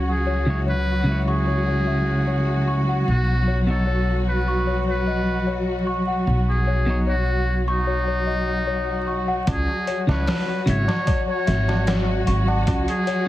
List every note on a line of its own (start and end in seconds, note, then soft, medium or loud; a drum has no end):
0.00 3.04 C#2 medium
0.00 9.45 F#3 medium
0.00 9.46 F#4 medium
0.00 0.27 C#5 medium
0.00 1.87 E5 medium
0.00 0.25 F#5 medium
0.00 1.28 C#6 medium
0.10 0.62 G#4 medium
0.27 0.47 C#5 medium
0.46 0.73 C#3 medium
0.46 0.74 G#3 medium
0.46 0.74 E4 medium
0.46 0.75 C#5 medium
0.67 1.23 B4 medium
0.67 1.26 C#5 medium
1.04 3.03 C#3 medium
1.04 3.04 G#3 medium
1.09 3.06 E4 medium
1.09 3.07 C#5 medium
1.28 2.93 G#4 medium
1.28 1.39 C#6 medium
1.47 1.67 C#5 medium
1.68 1.85 C#5 medium
1.87 2.07 E5 medium
2.27 2.65 C#5 medium
2.68 2.86 C#6 medium
2.89 3.08 F#5 medium
3.08 6.24 B1 medium
3.08 3.63 F#4 loud
3.48 3.67 C#5 medium
3.67 3.83 B2 medium
3.67 3.84 F#3 medium
3.67 3.84 D#4 medium
3.67 4.22 A4 medium
3.67 3.85 C#5 medium
3.87 4.46 C#5 medium
4.28 4.82 B4 medium
4.48 4.59 C#6 medium
4.67 4.87 C#5 medium
4.88 5.60 B4 medium
4.88 5.05 C#5 medium
5.07 5.27 D#5 medium
5.47 5.85 C#5 medium
5.87 6.06 C#6 medium
6.08 6.65 F#5 medium
6.27 9.43 B1 medium
6.50 7.02 G#4 medium
6.67 6.87 C#5 medium
6.86 7.13 B2 medium
6.86 7.14 F#3 medium
6.86 7.14 D#4 medium
6.90 7.15 C#5 loud
7.07 7.63 F#4 medium
7.07 7.66 C#5 medium
7.68 9.33 D#4 loud
7.68 7.79 C#6 medium
7.87 8.06 C#5 medium
8.08 8.25 C#5 medium
8.27 8.47 D#5 medium
8.67 9.05 C#5 medium
9.07 9.26 C#6 medium
9.28 9.47 F#5 medium
9.46 9.66 C#2 loud
9.46 13.28 F#3 medium
9.46 13.28 F#4 medium
9.46 10.03 G#4 loud
9.46 kick loud
9.46 closed hi-hat medium
9.46 tabla na medium
9.68 tabla na soft
9.87 10.07 C#5 medium
9.87 closed hi-hat medium
10.07 10.25 C#2 medium
10.07 10.23 C#3 medium
10.07 10.24 G#3 medium
10.07 10.25 E4 medium
10.07 10.63 B4 medium
10.07 snare medium
10.07 tabla na medium
10.11 10.25 C#5 medium
10.27 10.86 C#5 medium
10.27 snare loud
10.27 open hi-hat medium
10.27 tabla na medium
10.49 tabla na soft
10.66 10.86 G#1 medium
10.66 10.84 C#3 medium
10.66 10.84 G#3 medium
10.66 10.85 E4 medium
10.66 11.23 C#5 medium
10.66 10.85 E5 medium
10.66 closed hi-hat medium
10.88 10.99 C#6 loud
10.88 snare medium
10.88 tabla na medium
11.07 11.27 C#5 medium
11.07 kick loud
11.07 closed hi-hat medium
11.07 tabla na medium
11.27 11.45 C#5 medium
11.27 12.01 C#5 medium
11.27 tabla na soft
11.47 12.24 G#1 medium
11.47 11.67 E5 medium
11.47 snare soft
11.47 closed hi-hat medium
11.68 snare soft
11.68 tabla na medium
11.87 12.25 C#5 medium
11.87 snare loud
11.87 closed hi-hat medium
11.87 tabla na medium
12.08 tabla na soft
12.27 12.63 G#1 medium
12.27 12.46 C#6 medium
12.27 closed hi-hat medium
12.47 13.05 F#5 medium
12.47 tabla na medium
12.67 12.86 C#2 loud
12.67 kick loud
12.67 closed hi-hat medium
12.67 tabla na medium
12.88 13.28 G#4 loud
12.88 closed hi-hat soft
12.88 tabla na soft
13.07 13.27 C#5 medium
13.07 closed hi-hat medium